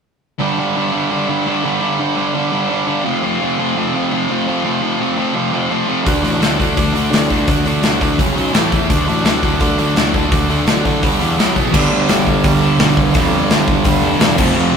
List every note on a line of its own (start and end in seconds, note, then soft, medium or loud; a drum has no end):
0.38 0.56 G2 medium
0.38 0.56 D3 medium
0.38 0.57 G3 medium
0.38 0.57 B3 medium
0.38 0.58 D4 medium
0.56 0.74 G2 medium
0.56 0.74 D3 medium
0.56 0.75 G3 medium
0.56 0.76 B3 medium
0.56 0.76 D4 medium
0.75 0.91 G2 medium
0.75 0.91 D3 medium
0.75 0.92 G3 medium
0.75 0.92 B3 medium
0.75 0.93 D4 medium
0.92 1.09 G2 medium
0.92 1.10 D3 medium
0.92 1.10 G3 medium
0.92 1.10 B3 medium
0.92 1.11 D4 medium
1.11 1.27 G2 medium
1.11 1.27 D3 medium
1.11 1.27 G3 medium
1.11 1.28 B3 medium
1.11 1.29 D4 medium
1.28 1.44 G2 medium
1.28 1.45 D3 loud
1.28 1.45 G3 medium
1.28 1.46 B3 medium
1.28 1.46 D4 medium
1.45 1.62 G2 medium
1.45 1.62 D3 medium
1.45 1.63 G3 medium
1.45 1.63 B3 medium
1.45 1.64 D4 medium
1.63 1.80 G2 medium
1.63 1.81 D3 medium
1.63 1.81 G3 medium
1.63 1.81 B3 medium
1.63 1.82 D4 medium
1.81 1.97 G2 medium
1.81 1.97 D3 medium
1.81 1.98 G3 loud
1.81 1.98 B3 medium
1.81 1.98 D4 medium
1.98 2.14 G2 medium
1.98 2.15 D3 medium
1.98 2.15 G3 medium
1.98 2.16 B3 medium
1.98 2.16 D4 loud
2.16 2.32 G2 medium
2.16 2.32 D3 medium
2.16 2.33 G3 medium
2.16 2.33 B3 medium
2.16 2.34 D4 medium
2.33 2.50 G2 medium
2.33 2.51 D3 medium
2.33 2.51 G3 loud
2.33 2.51 B3 medium
2.33 2.52 D4 loud
2.51 2.68 G2 medium
2.51 2.69 D3 medium
2.51 2.69 G3 medium
2.51 2.70 B3 medium
2.51 2.70 D4 medium
2.69 2.86 G2 medium
2.69 2.86 D3 medium
2.69 2.87 G3 medium
2.69 2.87 B3 medium
2.69 2.87 D4 loud
2.87 3.04 G2 medium
2.87 3.04 D3 medium
2.87 3.04 G3 medium
2.87 3.04 B3 medium
2.87 3.05 D4 loud
3.04 3.22 F2 medium
3.04 3.21 C3 loud
3.04 3.22 F3 medium
3.04 3.22 A3 medium
3.04 3.23 C4 medium
3.04 3.23 F4 medium
3.22 3.41 F2 medium
3.22 3.40 C3 medium
3.22 3.40 F3 medium
3.22 3.40 A3 medium
3.22 3.41 C4 loud
3.22 3.41 F4 medium
3.40 3.58 F2 medium
3.40 3.58 C3 medium
3.40 3.57 F3 medium
3.40 3.58 A3 medium
3.40 3.58 C4 medium
3.40 3.58 F4 medium
3.57 3.76 F2 medium
3.57 3.76 C3 medium
3.57 3.74 F3 medium
3.57 3.75 A3 medium
3.57 3.75 C4 medium
3.57 3.76 F4 medium
3.74 3.93 F2 medium
3.74 3.94 C3 medium
3.74 3.91 F3 medium
3.74 3.93 A3 medium
3.74 3.93 C4 medium
3.74 3.93 F4 medium
3.92 4.11 F2 medium
3.92 4.12 C3 medium
3.92 4.09 F3 medium
3.92 4.10 A3 medium
3.92 4.10 C4 medium
3.92 4.11 F4 medium
4.10 4.29 F2 medium
4.10 4.29 C3 medium
4.10 4.27 F3 medium
4.10 4.28 A3 medium
4.10 4.28 C4 medium
4.10 4.28 F4 medium
4.28 4.46 F2 medium
4.28 4.46 C3 medium
4.28 4.45 F3 medium
4.28 4.46 A3 medium
4.28 4.46 C4 medium
4.28 4.46 F4 medium
4.46 4.63 F2 medium
4.46 4.63 C3 medium
4.46 4.62 F3 medium
4.46 4.64 A3 medium
4.46 4.63 C4 medium
4.46 4.64 F4 medium
4.63 4.81 F2 medium
4.63 4.81 C3 medium
4.63 4.80 F3 medium
4.63 4.82 A3 loud
4.63 4.81 C4 loud
4.63 4.81 F4 medium
4.81 4.98 F2 medium
4.81 4.99 C3 medium
4.81 4.98 F3 medium
4.81 4.99 A3 medium
4.81 4.99 C4 medium
4.81 5.00 F4 medium
4.99 5.16 F2 medium
4.99 5.16 C3 medium
4.99 5.16 F3 medium
4.99 5.17 A3 medium
4.99 5.17 C4 medium
4.99 5.17 F4 medium
5.17 5.34 F2 medium
5.17 5.34 C3 medium
5.17 5.33 F3 medium
5.17 5.34 A3 medium
5.17 5.34 C4 medium
5.17 5.34 F4 medium
5.34 5.51 F2 medium
5.34 5.52 C3 medium
5.34 5.51 F3 medium
5.34 5.52 A3 medium
5.34 5.52 C4 medium
5.34 5.52 F4 medium
5.52 5.69 F2 medium
5.52 5.69 C3 medium
5.52 5.68 F3 medium
5.52 5.70 A3 medium
5.52 5.69 C4 medium
5.52 5.70 F4 loud
5.70 5.87 F2 medium
5.70 5.87 C3 medium
5.70 5.85 F3 medium
5.70 5.87 A3 medium
5.70 5.87 C4 medium
5.70 5.87 F4 medium
5.87 6.05 F2 medium
5.87 6.04 C3 medium
5.87 6.04 F3 medium
5.87 6.04 A3 medium
5.87 6.05 C4 medium
5.87 6.05 F4 medium
6.04 6.22 D2 medium
6.04 6.21 D3 medium
6.04 6.22 A3 medium
6.04 6.23 D4 loud
6.04 6.24 F#4 loud
6.04 kick loud
6.04 open hi-hat medium
6.23 6.40 A1 medium
6.23 6.39 D3 medium
6.23 6.40 A3 medium
6.23 6.40 D4 medium
6.23 6.41 F#4 medium
6.23 open hi-hat medium
6.40 6.58 D2 medium
6.40 6.57 D3 medium
6.40 6.57 A3 medium
6.40 6.58 D4 medium
6.40 6.58 F#4 medium
6.40 snare medium
6.40 open hi-hat medium
6.58 6.76 D2 medium
6.58 6.74 D3 medium
6.58 6.74 A3 medium
6.58 6.75 D4 medium
6.58 6.75 F#4 medium
6.58 kick medium
6.58 open hi-hat medium
6.75 6.94 D2 medium
6.75 6.92 D3 medium
6.75 6.93 A3 medium
6.75 6.94 D4 medium
6.75 6.94 F#4 medium
6.75 kick medium
6.75 open hi-hat medium
6.94 7.11 D2 medium
6.94 7.10 D3 medium
6.94 7.10 A3 medium
6.94 7.11 D4 medium
6.94 7.11 F#4 loud
6.94 open hi-hat medium
7.11 7.29 D2 medium
7.11 7.27 D3 medium
7.11 7.28 A3 medium
7.11 7.28 D4 medium
7.11 7.29 F#4 medium
7.11 snare loud
7.11 open hi-hat medium
7.28 7.47 D2 medium
7.28 7.46 D3 medium
7.28 7.47 A3 medium
7.28 7.47 D4 medium
7.28 7.47 F#4 medium
7.28 kick medium
7.28 open hi-hat soft
7.47 7.65 D2 medium
7.47 7.64 D3 medium
7.47 7.64 A3 medium
7.47 7.64 D4 medium
7.47 7.65 F#4 loud
7.47 kick loud
7.47 open hi-hat medium
7.65 7.83 D2 medium
7.65 7.81 D3 medium
7.65 7.82 A3 medium
7.65 7.82 D4 medium
7.65 7.83 F#4 medium
7.65 open hi-hat medium
7.82 8.00 D2 medium
7.82 7.98 D3 medium
7.82 7.98 A3 medium
7.82 7.99 D4 medium
7.82 7.99 F#4 medium
7.82 snare loud
7.82 open hi-hat medium
7.99 8.18 D2 medium
7.99 8.17 D3 medium
7.99 8.17 A3 medium
7.99 8.17 D4 medium
7.99 8.17 F#4 loud
7.99 kick medium
7.99 open hi-hat medium
8.17 8.35 F#1 medium
8.17 8.35 F#2 medium
8.17 8.36 C#3 medium
8.17 8.34 F#3 medium
8.17 8.35 C#4 loud
8.17 8.36 F#4 medium
8.17 8.36 C#5 loud
8.17 kick medium
8.17 open hi-hat medium
8.35 8.53 B1 medium
8.35 8.53 F#2 medium
8.35 8.53 C#3 medium
8.35 8.52 F#3 medium
8.35 8.53 C#4 medium
8.35 8.53 F#4 loud
8.35 8.54 C#5 medium
8.35 open hi-hat soft
8.53 8.71 A1 medium
8.53 8.70 A2 medium
8.53 8.71 E3 medium
8.53 8.71 A3 loud
8.53 8.70 E4 medium
8.53 8.71 A4 medium
8.53 8.71 E5 loud
8.53 snare loud
8.53 open hi-hat medium
8.71 8.89 E2 medium
8.71 8.88 A2 medium
8.71 8.89 E3 medium
8.71 8.88 A3 medium
8.71 8.89 E4 medium
8.71 8.90 A4 medium
8.71 8.89 E5 medium
8.71 kick medium
8.71 open hi-hat soft
8.88 9.06 D2 medium
8.88 9.04 D3 medium
8.88 9.05 F#3 medium
8.88 9.05 A3 medium
8.88 9.06 D4 medium
8.88 9.06 F#4 loud
8.88 9.08 D5 loud
8.88 kick loud
8.88 open hi-hat medium
9.05 9.24 A1 medium
9.05 9.22 D3 medium
9.05 9.23 F#3 medium
9.05 9.23 A3 medium
9.05 9.24 D4 medium
9.05 9.24 F#4 loud
9.05 9.24 D5 medium
9.05 open hi-hat soft
9.23 9.42 D2 medium
9.23 9.40 D3 medium
9.23 9.41 F#3 medium
9.23 9.41 A3 medium
9.23 9.42 D4 medium
9.23 9.42 F#4 medium
9.23 9.42 D5 medium
9.23 snare medium
9.23 open hi-hat medium
9.42 9.60 D2 medium
9.42 9.58 D3 medium
9.42 9.59 F#3 medium
9.42 9.59 A3 loud
9.42 9.59 D4 medium
9.42 9.60 F#4 medium
9.42 9.60 D5 loud
9.42 kick medium
9.42 open hi-hat soft
9.59 9.78 D2 medium
9.59 9.75 D3 medium
9.59 9.76 F#3 medium
9.59 9.76 A3 medium
9.59 9.76 D4 medium
9.59 9.77 F#4 medium
9.59 9.78 D5 medium
9.59 kick medium
9.59 open hi-hat medium
9.76 9.95 D2 medium
9.76 9.94 D3 medium
9.76 9.94 F#3 medium
9.76 9.95 A3 medium
9.76 9.95 D4 loud
9.76 9.95 F#4 loud
9.76 9.96 D5 loud
9.76 open hi-hat soft
9.95 10.13 D2 medium
9.95 10.11 D3 medium
9.95 10.12 F#3 medium
9.95 10.13 A3 medium
9.95 10.13 D4 medium
9.95 10.13 F#4 medium
9.95 10.14 D5 medium
9.95 snare loud
9.95 open hi-hat medium
10.13 10.31 D2 medium
10.13 10.30 D3 medium
10.13 10.30 F#3 medium
10.13 10.31 A3 medium
10.13 10.31 D4 medium
10.13 10.32 F#4 medium
10.13 10.32 D5 medium
10.13 kick medium
10.13 open hi-hat medium
10.31 10.49 D2 medium
10.31 10.48 D3 medium
10.31 10.49 F#3 loud
10.31 10.49 A3 loud
10.31 10.49 D4 loud
10.31 10.50 F#4 loud
10.31 10.50 D5 loud
10.31 kick loud
10.31 open hi-hat medium
10.49 10.66 D2 medium
10.49 10.65 D3 medium
10.49 10.66 F#3 medium
10.49 10.66 A3 medium
10.49 10.67 D4 medium
10.49 10.67 F#4 medium
10.49 10.67 D5 medium
10.49 open hi-hat medium
10.66 10.84 D2 medium
10.66 10.82 D3 medium
10.66 10.83 F#3 medium
10.66 10.83 A3 medium
10.66 10.84 D4 medium
10.66 10.84 F#4 medium
10.66 10.85 D5 medium
10.66 snare loud
10.66 open hi-hat medium
10.84 11.02 D2 medium
10.84 11.01 D3 medium
10.84 11.01 F#3 medium
10.84 11.01 A3 medium
10.84 11.01 D4 medium
10.84 11.02 F#4 loud
10.84 11.02 D5 medium
10.84 kick medium
10.84 open hi-hat medium
11.02 11.19 G1 medium
11.02 11.19 G2 medium
11.02 11.19 D3 medium
11.02 11.18 G3 medium
11.02 11.19 D4 medium
11.02 11.19 G4 medium
11.02 11.20 D5 loud
11.02 kick loud
11.02 open hi-hat medium
11.20 11.37 E2 medium
11.20 11.37 G2 medium
11.20 11.37 D3 medium
11.20 11.37 G3 medium
11.20 11.37 D4 medium
11.20 11.37 G4 loud
11.20 11.37 D5 medium
11.20 open hi-hat medium
11.37 11.55 B1 medium
11.37 11.54 B2 medium
11.37 11.55 F#3 medium
11.37 11.55 B3 medium
11.37 11.55 F#4 loud
11.37 snare loud
11.37 open hi-hat medium
11.55 11.73 F#1 medium
11.55 11.72 B2 medium
11.55 11.72 F#3 medium
11.55 11.72 B3 medium
11.55 11.73 F#4 medium
11.55 kick medium
11.55 open hi-hat medium
11.73 11.87 G1 loud
11.73 12.60 G2 medium
11.73 12.61 D3 loud
11.73 12.61 G3 loud
11.73 12.61 B3 medium
11.73 12.60 D4 loud
11.73 kick loud
11.73 crash loud
11.90 12.04 D2 medium
12.09 12.22 G1 medium
12.09 snare loud
12.09 open hi-hat medium
12.26 12.39 G1 medium
12.26 kick medium
12.44 12.70 G1 medium
12.44 13.13 G2 medium
12.44 13.14 D3 medium
12.44 13.15 G3 medium
12.44 kick loud
12.44 open hi-hat medium
12.61 12.77 G2 medium
12.61 12.78 D3 medium
12.61 12.79 G3 medium
12.61 12.78 B3 medium
12.61 12.78 D4 medium
12.78 12.92 B1 loud
12.78 13.12 G2 medium
12.78 13.14 D3 medium
12.78 13.14 G3 medium
12.78 13.14 B3 loud
12.78 13.14 D4 loud
12.78 snare loud
12.78 open hi-hat medium
12.97 13.10 C2 medium
12.97 kick medium
13.14 13.41 F2 loud
13.14 14.01 G2 medium
13.14 14.02 D3 loud
13.14 14.02 G3 loud
13.14 14.02 B3 loud
13.14 14.01 D4 loud
13.14 kick loud
13.14 open hi-hat medium
13.49 13.76 G1 medium
13.49 snare loud
13.49 open hi-hat medium
13.68 kick medium
13.84 13.98 G1 medium
13.84 14.37 G2 medium
13.84 14.38 D3 medium
13.84 14.38 G3 medium
13.84 kick loud
13.84 open hi-hat medium
14.02 14.15 F1 medium
14.02 14.18 G2 medium
14.02 14.18 D3 medium
14.02 14.19 G3 medium
14.02 14.20 B3 medium
14.02 14.19 D4 medium
14.19 14.39 E1 loud
14.19 14.36 G2 medium
14.19 14.37 D3 medium
14.19 14.37 G3 medium
14.19 14.37 B3 medium
14.19 14.38 D4 loud
14.19 snare loud
14.19 open hi-hat medium
14.38 14.52 F1 medium
14.38 14.77 F2 medium
14.38 14.77 C3 medium
14.38 14.77 F3 loud
14.38 14.77 A3 medium
14.38 14.77 C4 medium
14.38 kick loud
14.38 crash loud
14.55 14.69 F1 loud
14.72 14.77 C2 medium